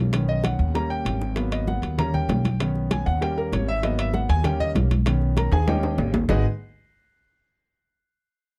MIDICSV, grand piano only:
0, 0, Header, 1, 2, 480
1, 0, Start_track
1, 0, Key_signature, 5, "minor"
1, 0, Tempo, 307535
1, 212, Time_signature, 4, 2, 24, 8
1, 13401, End_track
2, 0, Start_track
2, 0, Title_t, "Grand piano"
2, 0, Program_c, 0, 0
2, 0, Note_on_c, 0, 55, 56
2, 0, Note_on_c, 0, 58, 51
2, 0, Note_on_c, 0, 61, 59
2, 157, Note_off_c, 0, 55, 0
2, 160, Note_off_c, 0, 58, 0
2, 166, Note_off_c, 0, 61, 0
2, 198, Note_on_c, 0, 51, 56
2, 208, Note_on_c, 0, 59, 47
2, 217, Note_on_c, 0, 61, 61
2, 448, Note_on_c, 0, 75, 89
2, 685, Note_off_c, 0, 75, 0
2, 689, Note_on_c, 0, 78, 83
2, 1120, Note_off_c, 0, 51, 0
2, 1125, Note_off_c, 0, 59, 0
2, 1130, Note_off_c, 0, 61, 0
2, 1140, Note_off_c, 0, 78, 0
2, 1164, Note_on_c, 0, 55, 52
2, 1174, Note_on_c, 0, 58, 49
2, 1177, Note_on_c, 0, 82, 92
2, 1183, Note_on_c, 0, 61, 59
2, 1408, Note_on_c, 0, 79, 98
2, 1410, Note_off_c, 0, 82, 0
2, 1856, Note_off_c, 0, 55, 0
2, 1862, Note_off_c, 0, 58, 0
2, 1866, Note_off_c, 0, 61, 0
2, 2084, Note_off_c, 0, 79, 0
2, 2118, Note_on_c, 0, 54, 55
2, 2130, Note_on_c, 0, 58, 49
2, 2140, Note_on_c, 0, 59, 67
2, 2374, Note_on_c, 0, 75, 66
2, 2611, Note_off_c, 0, 75, 0
2, 2618, Note_on_c, 0, 78, 80
2, 3043, Note_off_c, 0, 54, 0
2, 3049, Note_off_c, 0, 58, 0
2, 3054, Note_off_c, 0, 59, 0
2, 3067, Note_off_c, 0, 78, 0
2, 3089, Note_on_c, 0, 55, 53
2, 3100, Note_on_c, 0, 58, 49
2, 3103, Note_on_c, 0, 82, 97
2, 3106, Note_on_c, 0, 61, 66
2, 3336, Note_off_c, 0, 82, 0
2, 3343, Note_on_c, 0, 79, 97
2, 3781, Note_off_c, 0, 55, 0
2, 3787, Note_off_c, 0, 58, 0
2, 3790, Note_off_c, 0, 61, 0
2, 4014, Note_off_c, 0, 79, 0
2, 4053, Note_on_c, 0, 51, 57
2, 4057, Note_on_c, 0, 59, 52
2, 4068, Note_on_c, 0, 61, 57
2, 4547, Note_on_c, 0, 80, 74
2, 4779, Note_off_c, 0, 80, 0
2, 4779, Note_on_c, 0, 78, 104
2, 4972, Note_off_c, 0, 51, 0
2, 4974, Note_off_c, 0, 59, 0
2, 4980, Note_off_c, 0, 61, 0
2, 5015, Note_off_c, 0, 78, 0
2, 5015, Note_on_c, 0, 55, 60
2, 5021, Note_on_c, 0, 58, 57
2, 5029, Note_on_c, 0, 79, 100
2, 5032, Note_on_c, 0, 61, 61
2, 5261, Note_off_c, 0, 79, 0
2, 5270, Note_on_c, 0, 70, 83
2, 5501, Note_off_c, 0, 70, 0
2, 5515, Note_on_c, 0, 73, 79
2, 5705, Note_off_c, 0, 55, 0
2, 5708, Note_off_c, 0, 58, 0
2, 5714, Note_off_c, 0, 61, 0
2, 5743, Note_off_c, 0, 73, 0
2, 5751, Note_on_c, 0, 76, 117
2, 5973, Note_on_c, 0, 54, 57
2, 5982, Note_off_c, 0, 76, 0
2, 5982, Note_on_c, 0, 58, 54
2, 5988, Note_on_c, 0, 75, 80
2, 5994, Note_on_c, 0, 59, 67
2, 6220, Note_off_c, 0, 75, 0
2, 6221, Note_on_c, 0, 76, 92
2, 6456, Note_off_c, 0, 76, 0
2, 6464, Note_on_c, 0, 78, 86
2, 6698, Note_off_c, 0, 78, 0
2, 6703, Note_on_c, 0, 80, 114
2, 6892, Note_off_c, 0, 54, 0
2, 6896, Note_off_c, 0, 58, 0
2, 6902, Note_off_c, 0, 59, 0
2, 6926, Note_on_c, 0, 55, 56
2, 6938, Note_off_c, 0, 80, 0
2, 6938, Note_on_c, 0, 58, 51
2, 6940, Note_on_c, 0, 79, 91
2, 6945, Note_on_c, 0, 61, 65
2, 7176, Note_off_c, 0, 79, 0
2, 7184, Note_on_c, 0, 75, 111
2, 7329, Note_off_c, 0, 75, 0
2, 7619, Note_off_c, 0, 55, 0
2, 7626, Note_off_c, 0, 58, 0
2, 7629, Note_off_c, 0, 61, 0
2, 7896, Note_on_c, 0, 51, 56
2, 7904, Note_on_c, 0, 59, 53
2, 7912, Note_on_c, 0, 61, 62
2, 8390, Note_on_c, 0, 82, 80
2, 8397, Note_on_c, 0, 70, 61
2, 8584, Note_off_c, 0, 51, 0
2, 8588, Note_off_c, 0, 59, 0
2, 8592, Note_off_c, 0, 61, 0
2, 8620, Note_off_c, 0, 82, 0
2, 8622, Note_on_c, 0, 80, 100
2, 8624, Note_off_c, 0, 70, 0
2, 8627, Note_on_c, 0, 68, 85
2, 8855, Note_on_c, 0, 55, 56
2, 8856, Note_off_c, 0, 80, 0
2, 8859, Note_off_c, 0, 68, 0
2, 8865, Note_on_c, 0, 58, 51
2, 8871, Note_on_c, 0, 79, 94
2, 8877, Note_on_c, 0, 61, 65
2, 8878, Note_on_c, 0, 67, 70
2, 8878, Note_on_c, 0, 73, 65
2, 8878, Note_on_c, 0, 75, 69
2, 9537, Note_off_c, 0, 79, 0
2, 9540, Note_off_c, 0, 75, 0
2, 9541, Note_off_c, 0, 67, 0
2, 9541, Note_off_c, 0, 73, 0
2, 9543, Note_off_c, 0, 55, 0
2, 9548, Note_off_c, 0, 58, 0
2, 9554, Note_off_c, 0, 61, 0
2, 9818, Note_on_c, 0, 56, 101
2, 9822, Note_on_c, 0, 63, 81
2, 9828, Note_on_c, 0, 66, 85
2, 9829, Note_on_c, 0, 68, 87
2, 9830, Note_on_c, 0, 71, 84
2, 9835, Note_on_c, 0, 75, 98
2, 10043, Note_off_c, 0, 56, 0
2, 10045, Note_off_c, 0, 63, 0
2, 10048, Note_off_c, 0, 66, 0
2, 10049, Note_off_c, 0, 68, 0
2, 10050, Note_off_c, 0, 71, 0
2, 10052, Note_off_c, 0, 75, 0
2, 13401, End_track
0, 0, End_of_file